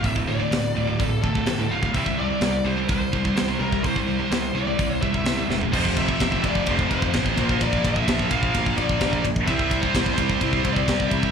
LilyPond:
<<
  \new Staff \with { instrumentName = "Lead electric guitar" } { \time 4/4 \key c \mixolydian \tempo 4 = 127 e''8 d''4. a'8 a'4 f''8 | e''8 d''4 c''8 c''4. bes'8 | c''4. d''4 e''4 r8 | c''8 e''4 d''8 c''8 c''4. |
d''8 e''4 f''4 d''4 r8 | e''8. c''8. c''4~ c''16 d''8. e''8 | }
  \new Staff \with { instrumentName = "Distorted electric guitar" } { \clef bass \time 4/4 \key c \mixolydian r1 | r1 | r1 | <f, c f>4. <f, c f>2 <bes, f bes>8~ |
<bes, f bes>4 <bes, f bes>2~ <bes, f bes>8 r8 | <c g c'>4. <c g c'>2~ <c g c'>8 | }
  \new Staff \with { instrumentName = "Distorted electric guitar" } { \clef bass \time 4/4 \key c \mixolydian <d, a,>16 <d, a,>16 <d, a,>16 <d, a,>16 <d, a,>8 <d, a,>16 <d, a,>16 <d, a,>8 <d, a,>16 <d, a,>16 <d, a,>16 <d, a,>16 <d, a,>16 <d, a,>16 | <c g c'>16 <c g>16 <c g>16 <c g>16 <c g>8 <c g>16 <c g>16 <c g>8 <c g>16 <c g>16 <c g>16 <c g>16 <c g>16 <c g>16 | <c g>16 <c g>16 <c g>16 <c g>16 <c g>8 <c g>16 <c g>16 <c g>8 <c g>16 <c g>16 <c g>16 <c g>16 <c g>16 <c g>16 | <f, c f>2.~ <f, c f>8 <bes, f bes>8~ |
<bes, f bes>2.~ <bes, f bes>8 r8 | <c g c'>1 | }
  \new Staff \with { instrumentName = "Distorted electric guitar" } { \clef bass \time 4/4 \key c \mixolydian <d, a,>16 <d, a,>16 <d, a,>16 <d, a,>16 <d, a,>8 <d, a,>16 <d, a,>16 <d, a,>8 <d, a,>16 <d, a,>16 <d, a,>16 <d, a,>16 <d, a,>16 <d, a,>16 | <c g c'>16 <c g>16 <c g>16 <c g>16 <c g>8 <c g>16 <c g>16 <c g>8 <c g>16 <c g>16 <c g>16 <c g>16 <c g>16 <c g>16 | <c g>16 <c g>16 <c g>16 <c g>16 <c g>8 <c g>16 <c g>16 <c g>8 <c g>16 <c g>16 <c g>16 <c g>16 <c g>16 <c g>16 | <f, c f>2 <f, c f>4. <bes, f bes>8~ |
<bes, f bes>4. <bes, f bes>2 r8 | <c g c'>2 <c g c'>2 | }
  \new Staff \with { instrumentName = "Picked electric bass" } { \clef bass \time 4/4 \key c \mixolydian d,,4 d,,8 d,,8 d,,8 d,,8 d,,8 d,,8 | c,4 c,8 c,8 c,8 c,8 c,8 c,8 | c,4 c,8 c,8 c,8 c,8 c,8 e,,8 | f,,4 f,,8 f,,8 f,,8 f,,8 a,,8 bes,,8 |
bes,,8 bes,,8 bes,,8 bes,,8 bes,,8 bes,,8 bes,,8 bes,,8 | c,4 c,8 c,8 c,8 c,8 c,8 c,8 | }
  \new DrumStaff \with { instrumentName = "Drums" } \drummode { \time 4/4 <hho bd>16 bd8. <hho sn>4 <hho bd>8 bd16 bd16 <hho sn>8. bd16 | <hho bd>16 bd8. <hho sn>4 <hho bd>8 bd16 bd16 <hho sn>8. bd16 | <hho bd>16 bd8. <hho sn>4 <hho bd>8 bd16 bd16 <hho sn>8 sn16 tomfh16 | <cymc bd>16 bd16 <bd cymr>16 bd16 <bd cymr sn>16 bd16 <bd cymr>16 bd16 <bd cymr>16 bd16 <bd cymr>16 bd16 <bd cymr sn>16 bd16 <bd cymr>16 bd16 |
<bd cymr>16 bd16 <bd cymr>16 bd16 <bd cymr sn>16 bd16 <bd cymr>16 bd16 <bd cymr>16 bd16 <bd cymr>16 bd16 <bd cymr sn>16 bd16 <bd cymr>16 bd16 | <bd cymr>16 bd16 <bd cymr>16 bd16 <bd cymr sn>16 bd16 <bd cymr>16 bd16 <bd cymr>16 bd16 <bd cymr>16 bd16 <bd cymr sn>16 bd16 <bd cymr>16 bd16 | }
>>